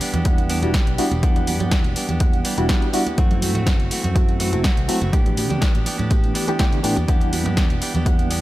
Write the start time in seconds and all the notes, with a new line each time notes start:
Already playing: G3 B3 D4 E4 F#5
0.01 E3 B3 D4 G4, muted fingered electric bass stroke, open hi-hat, tambourine
0.14 E2 B3 D4 G4, closed hi-hat, tambourine, low conga
0.25 G3 B3 D4 E4 F#5, kick, closed hi-hat, tambourine, high conga
0.38 closed hi-hat, tambourine
0.49 E3 B3 D4 G4, open hi-hat, tambourine
0.62 E1 G3 B3 D4 E4 F#4 G4, closed hi-hat, tambourine, high conga
0.74 E3 B3 D4 G4, kick, snare, closed hi-hat
0.87 B1, closed hi-hat, tambourine
0.98 E3 G3 B3 D4 E4 F#4 G4, muted fingered electric bass stroke, open hi-hat, tambourine
1.11 E1, closed hi-hat, tambourine, high conga
1.22 E2 E3 G3 B3 D4 E4 G4 F#5, kick, closed hi-hat, tambourine
1.36 closed hi-hat, tambourine, low conga
1.46 E3 B3 D4 G4, open hi-hat, tambourine, high conga
1.60 G2 B3 D4 G4, closed hi-hat, tambourine, low conga
1.71 E2 E3 B3 D4 G4, kick, snare, closed hi-hat, tambourine
1.84 E1 B3 D4 G4, closed hi-hat, tambourine, high conga
1.95 E3 B3 D4 G4, muted fingered electric bass stroke, open hi-hat, tambourine
2.08 E2 B3 D4 G4, closed hi-hat, tambourine, low conga
2.20 G3 B3 D4 E4 F#5, kick, closed hi-hat, tambourine, high conga
2.33 closed hi-hat, tambourine
2.44 E3 B3 D4 G4, open hi-hat, tambourine
2.57 E1 G3 B3 D4 E4 F#4 G4, closed hi-hat, tambourine, high conga
2.69 E3 G3 B3 D4 E4 F#4 G4, kick, snare, closed hi-hat, tambourine
2.82 closed hi-hat, tambourine
2.93 E3 G3 B3 D4 E4 F#4 G4, open hi-hat, tambourine
3.07 closed hi-hat, tambourine, high conga
3.17 F#2 E3 F#3 A3 C4 E4 F#4, kick, closed hi-hat, tambourine
3.31 closed hi-hat, tambourine, low conga
3.42 E3 A3 C4 F#4, open hi-hat, tambourine, high conga
3.55 A2 A3 C4 F#4, closed hi-hat, tambourine, low conga
3.66 F#2 E3 A3 C4, kick, snare, closed hi-hat
3.79 F#1 A3 C4 F#4, closed hi-hat, tambourine, high conga
3.90 E3 A3 C4 F#4, muted fingered electric bass stroke, open hi-hat, tambourine
4.03 F#2 A3 C4 F#4, closed hi-hat, tambourine, low conga
4.15 F#3 A3 C4 E4 F#4, kick, closed hi-hat, tambourine, high conga
4.29 closed hi-hat, tambourine
4.39 E3 A3 C4 F#4, open hi-hat, tambourine
4.52 F#1 F#3 A3 C4 E4 F#4, closed hi-hat, tambourine, high conga
4.63 E3 A3 C4 F#4, kick, snare, closed hi-hat, tambourine
4.77 C2, closed hi-hat, tambourine
4.88 E3 F#3 A3 C4 E4 F#4, muted fingered electric bass stroke, open hi-hat, tambourine
5.01 F#1, closed hi-hat, tambourine, high conga
5.12 A2 E3 A3 B3 D4 G4, kick, closed hi-hat, tambourine
5.26 closed hi-hat, tambourine, low conga
5.37 E3 B3 D4 G4, open hi-hat, tambourine, high conga
5.49 D3 B3 D4 G4, closed hi-hat, tambourine, low conga
5.61 A2 E3 B3 D4 G4, kick, snare, closed hi-hat
5.74 A1 B3 D4 G4, closed hi-hat, tambourine, high conga
5.85 E3 B3 D4 G4, muted fingered electric bass stroke, open hi-hat, tambourine
5.98 A2 B3 D4 G4, closed hi-hat, tambourine, low conga
6.10 E3 A3 B3 D4 G4, kick, closed hi-hat, tambourine, high conga
6.24 closed hi-hat, tambourine
6.34 E3 B3 D4 G4, open hi-hat, tambourine
6.47 E3 A3 B3 D4 G4, closed hi-hat, tambourine, high conga
6.59 E3 A3 B3 D4 G4, kick, snare, closed hi-hat, tambourine
6.72 D3, closed hi-hat, tambourine
6.83 A2 E3 A3 B3 D4 G4, open hi-hat, tambourine
6.96 E2 B3 D4 G4, closed hi-hat, tambourine, high conga
7.08 E2 E3 G3 B3 D4 E4 G4 F#5, kick, closed hi-hat, tambourine
7.21 closed hi-hat, tambourine, low conga
7.32 E3 B3 D4 G4, open hi-hat, tambourine, high conga
7.45 G2 B3 D4 G4, closed hi-hat, tambourine, low conga
7.57 E2 E3 B3 D4 G4, kick, snare, closed hi-hat
7.70 E1 B3 D4 G4, closed hi-hat, tambourine, high conga
7.81 E3 B3 D4 G4, muted fingered electric bass stroke, open hi-hat, tambourine
7.94 E2 B3 D4 G4, closed hi-hat, tambourine, low conga
8.06 G3 B3 D4 E4 F#5, kick, closed hi-hat, tambourine, high conga
8.19 closed hi-hat, tambourine
8.30 E3 B3 D4 G4, open hi-hat, tambourine